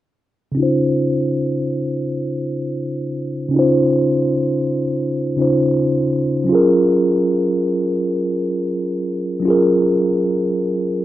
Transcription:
0.52 C#3 C#4
0.57 D#4 F4
0.63 C5
3.49 C#3 C#4
3.54 D#4 F4
3.59 C5
5.37 C#3 C#4 D#4 F4
5.42 C5
6.44 F#3 C#4
6.49 F4 G#4
6.55 A#4
9.40 F#3 C#4
9.45 F4 G#4
9.50 A#4

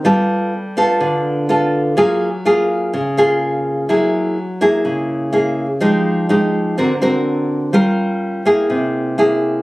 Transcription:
0.05 G3 B3 F4 A4
0.77 B3 F4 A4
1.00 D3
1.49 B3 F4 A4
1.97 F#3 A#3 F4 G#4
2.45 A#3 F4 G#4
2.93 C#3
3.17 A#3 F4 G#4
3.89 F#3 A#3 E4 G#4
4.61 A#3 E4 G#4
4.85 C#3
5.32 A#3 E4 G#4
5.80 F3 G#3 D#4 G4
6.29 G#3 D#4 G4
6.78 D3 C4 F#4 A#4
7.02 C4 F#4 A#4
7.73 G3 C#4 F4 A#4
8.45 A#3 E4 G#4
8.70 C3
9.18 A#3 E4 G#4

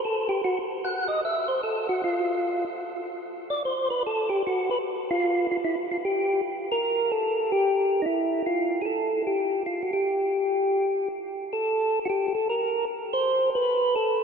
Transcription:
0.05 A4
0.29 G4
0.44 F#4
0.85 F#5
1.08 D#5
1.25 E5
1.48 C5
1.63 A4
1.89 F#4
2.04 F4
3.50 D5
3.65 C5
3.90 B4
4.07 A4
4.29 G4
4.47 F#4
4.71 B4
5.11 F4
5.51 F4
5.64 E4
5.92 F4
6.05 G4
6.72 A#4
7.12 A4
7.52 G4
8.02 D#4 E4
8.46 F4
8.82 G#4
8.86 A4
9.27 G4
9.66 F4
9.83 F#4
9.93 G4
11.53 A4
12.05 F#4
12.10 G4
12.28 G4
12.35 A4
12.49 A#4
13.13 C5
13.55 B4
13.96 A4

